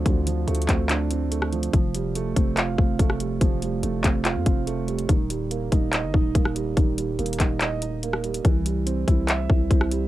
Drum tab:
HH |x-----x-----x-x-x-x-----x-----x-----x-----x--x--|x-----x-----x-----x-----x-----------x-----x-----|x-----x-----x-----x-----x-----x-----x-----x--x--|x-----x-----x-----x-----x-----------x-----x-----|
CP |------------------x-----x-----------------------|------------------------x-----------------------|------------------x-----x-----------------------|------------------------x-----------------------|
SD |---------------------------------------r--------|---------------------------------------r--------|------------------------------------------------|---------------------------------------r--------|
BD |o-----------------o-----------------------------|o-----------------o-----------o-----o-----------|o-----------------o-----------o-----------------|o-----------------o-----------o-----o-----------|

HH |x-----x-----x-x-x-x-----x-----x-----x-----x--x--|x-----x-----x-----x-----x-----------x-----x-----|
CP |------------------x-----x-----------------------|------------------------x-----------------------|
SD |---------------------------------------r--------|---------------------------------------r--------|
BD |o-----------------o-----------------------------|o-----------------o-----------o-----o-----------|